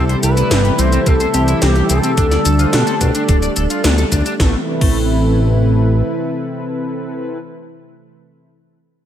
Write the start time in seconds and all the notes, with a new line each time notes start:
Already playing: C2 C3 E3 G3 A3 C4 E4 G4 A4
0.09 C5, closed hi-hat
0.23 C2 G4 B4, closed hi-hat, shaker
0.37 C3 C4 E4 G4 D5, closed hi-hat, shaker
0.51 G1 C4, snare, closed hi-hat, shaker
0.65 G4, closed hi-hat
0.79 C2 C4 C5, closed hi-hat, shaker
0.92 C3 C4 E4 G4 A4, closed hi-hat, shaker
1.06 C2 C4 A4, kick, closed hi-hat, shaker
1.20 C5, closed hi-hat, shaker
1.34 C2 C3 C4 E4 G4 C5, closed hi-hat, shaker
1.48 E4, closed hi-hat, shaker
1.62 C2 C4 G4, snare, closed hi-hat, shaker
1.76 C3 C4 E4 G4 A4, closed hi-hat
1.89 C2 C4 A4, closed hi-hat, shaker
2.04 C4, closed hi-hat, shaker
2.17 D2 D3 A3 D4 G4 A4, kick, closed hi-hat, shaker
2.31 D5, snare, closed hi-hat, shaker
2.45 D2 A4, closed hi-hat, shaker
2.59 D3 A3 D4 F4 G4 C5, closed hi-hat, shaker
2.73 B2 D4, snare, closed hi-hat, shaker
2.87 A4, closed hi-hat, shaker
3.01 B2 D4, kick, closed hi-hat, shaker
3.15 D3 A3 D4 G4 A4, closed hi-hat, shaker
3.28 D1 D4, kick, closed hi-hat, shaker
3.42 D5, closed hi-hat, shaker
3.56 D1 A4, closed hi-hat, shaker
3.70 F4, closed hi-hat, shaker
3.84 D2 D3 A3 D4 G4 A4, snare, closed hi-hat, shaker
3.98 A4, closed hi-hat, shaker
4.12 D2 D4, kick, closed hi-hat, shaker
4.26 D4, closed hi-hat, shaker
4.40 A1 C3 E3 A3 C4 E4 A4 B4, kick, snare
4.81 A1 A3 C4 E4 A4 B4, kick, crash